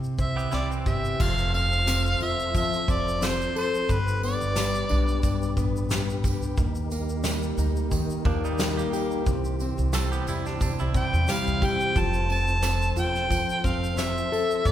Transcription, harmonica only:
0.21 E5
0.54 D5
0.87 E5
1.21 F5
1.54 F5
2.22 E5
2.57 E5
2.91 D5
3.25 C5
3.58 C5
3.92 B4
4.24 D5
10.96 G5
11.31 F5
11.66 G5
12.00 A5
12.31 A5
12.99 G5
13.66 F5
13.99 E5
14.67 D5

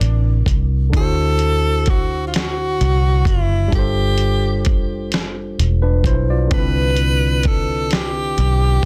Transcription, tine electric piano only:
Already playing: C3 C4 D4 E4 A#4
0.90 D3 D4
0.95 E4 F#4
1.00 C5
3.68 G3 D4
3.73 F4 A4
3.79 C5
5.82 D4 B4
6.06 E4 C5
6.30 F4 D5
6.47 D3 C4
6.53 D4 E4
6.58 B4

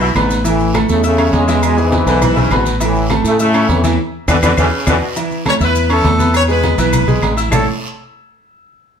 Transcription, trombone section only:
0.46 A2 E3
0.90 C#3 A3
1.05 C#3 A3
1.34 C#3 G#3
1.63 B2 G#3
1.78 G#2 E3
2.81 A2 E3
3.26 C#3 A3
3.41 C#3 A3
3.70 A2 E3
4.30 B2 D3 E3
4.44 B2 D3 E3
4.59 B2 D3 E3
4.89 B2 D3 E3

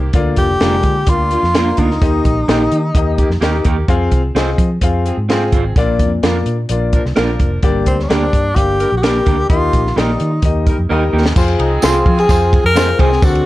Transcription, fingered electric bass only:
0.13 D2
0.37 F1
0.60 F1
0.83 D3
1.07 D2
1.43 F2
1.78 D2
2.02 D#2
2.25 A#1
2.48 A#1
2.72 D#3
2.95 D#2
3.29 F2
3.41 D#2
3.65 D#2
3.89 F2
4.12 C2
4.35 C2
4.58 F3
4.81 F2
5.17 G#2
5.53 G#1
5.76 A#1
6.00 F2
6.23 F2
6.46 A#2
6.70 A#1
7.05 C2
7.17 A#1
7.40 F1
7.63 G1
7.87 D2
8.10 D2
8.33 G2
8.56 G1
8.92 A#1
9.27 D2
9.50 D#2
9.74 A#1
9.97 A#1
10.20 D#3
10.42 D#2
10.78 F2
10.90 D#2
11.13 D#2
11.36 F2
11.59 C2
11.83 C2
12.06 F3
12.29 F2
12.64 F2
12.99 C2
13.23 D2

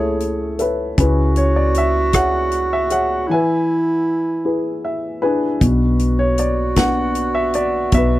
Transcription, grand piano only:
Already playing: A3 C#4 E4 A4 C#5 E5
0.59 A4 B4 C#5 E5
0.98 C#4 E4 G#4 B4
1.37 C#5
1.56 D5
1.78 E5
2.13 G#4 C#5 E5 F#5
2.73 E5
2.90 G#4 C#5 E5 F#5
3.29 E3 E5 G#5
3.34 B4
4.45 E4 G#4 B4
4.85 E5
5.22 D4 E4 G#4 B4 G#5
5.61 B2
6.19 C#5
6.39 D5
6.76 B3 D4 F#4 F#5
7.35 E5
7.55 D5
7.92 B2 E5
7.97 B4

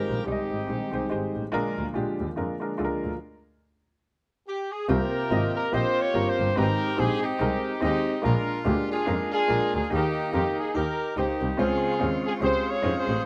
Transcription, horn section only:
Already playing: F4 G4 A#4
0.26 C4 D#4 G4
4.47 G4
4.71 G#4
4.89 F4 G4 A#4
5.54 A#4
5.73 F4 G4 C5
6.02 C#5
6.29 C5
6.57 D#4 G4 A#4
6.99 G#4
7.23 C4 D#4 G4
7.82 C4 D#4 G4
8.24 D4 F4 A#4
8.89 D4 F4 G#4
9.31 D4 F4 G#4
9.74 G#4
9.92 A#3 D#4 G4
10.34 G4
10.58 G#4
10.75 D#4 G4 A#4
11.17 A#3 D#4 G4
11.59 C4 F4 G#4
12.25 G#4
12.42 F4 G#4 C5
12.70 C#5
12.98 C5

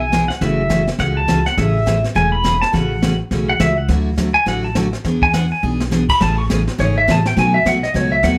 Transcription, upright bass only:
Already playing: B1
0.41 F#1
0.99 C#2
1.57 A1
2.15 E1
2.74 A1
3.31 B1
3.60 C#2
3.88 D2
4.46 A1
5.04 E2
5.63 B1
6.21 A1
6.79 G#1
7.08 A1
7.37 B1
7.65 B1
7.94 C#2
8.23 D#2

